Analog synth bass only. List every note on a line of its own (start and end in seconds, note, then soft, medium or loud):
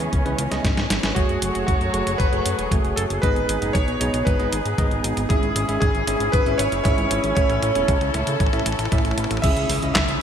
0.13 0.22 C#2 loud
0.26 0.35 C#2 medium
0.39 0.48 C#2 medium
0.52 0.61 C#2 medium
0.65 0.74 G#1 loud
0.78 0.87 G#1 medium
0.90 1.00 G#1 medium
1.03 1.13 G#1 medium
1.16 1.26 F#1 loud
1.29 1.38 F#1 medium
1.42 1.51 F#1 medium
1.55 1.64 F#1 medium
1.68 1.77 F#1 loud
1.81 1.90 F#1 medium
1.94 2.03 F#1 medium
2.07 2.16 F#1 medium
2.20 2.29 F#1 loud
2.33 2.42 F#1 medium
2.46 2.55 F#1 medium
2.59 2.68 E1 medium
2.71 2.81 F#1 loud
2.84 2.94 F#1 medium
2.97 3.07 F#1 medium
3.10 3.19 F#1 medium
3.23 3.32 G#1 loud
3.36 3.45 G#1 medium
3.49 3.58 G#1 medium
3.62 3.71 F#1 medium
3.75 3.84 B1 loud
3.88 3.97 B1 medium
4.01 4.10 B1 medium
4.14 4.23 B1 medium
4.27 4.36 G#1 loud
4.39 4.49 G#1 medium
4.52 4.62 G#1 medium
4.65 4.75 G#1 medium
4.78 4.88 G#1 loud
4.91 5.00 G#1 medium
5.04 5.13 G#1 medium
5.17 5.26 G#1 medium
5.30 5.39 G#1 loud
5.43 5.52 G#1 medium
5.56 5.65 G#1 medium
5.69 5.78 G#1 medium
5.82 5.91 G#1 loud
5.94 6.04 G#1 medium
6.07 6.17 G#1 medium
6.20 6.30 G#1 medium
6.33 6.43 G#1 loud
6.46 6.56 G#1 medium
6.59 6.69 G#1 medium
6.72 6.81 F#1 medium
6.85 6.94 G#1 loud
6.98 7.07 G#1 medium
7.11 7.20 G#1 medium
7.24 7.33 G#1 medium
7.37 7.46 A1 loud
7.50 7.59 A1 medium
7.63 7.72 A1 medium
7.75 7.85 E1 medium
7.89 7.98 C#2 loud
8.01 8.11 C#2 medium
8.14 8.24 C#2 medium
8.27 8.37 C#2 medium
8.40 8.50 A1 loud
8.53 8.62 A1 medium
8.66 8.75 A1 medium
8.79 8.88 A1 medium
8.92 9.01 A1 loud
9.05 9.14 A1 medium
9.18 9.27 A1 medium
9.31 9.40 A1 medium
9.44 9.53 C#2 loud
9.57 9.66 C#2 medium
9.70 9.79 C#2 medium
9.83 9.92 C#2 medium
9.96 10.05 C#2 loud
10.09 10.18 C#2 medium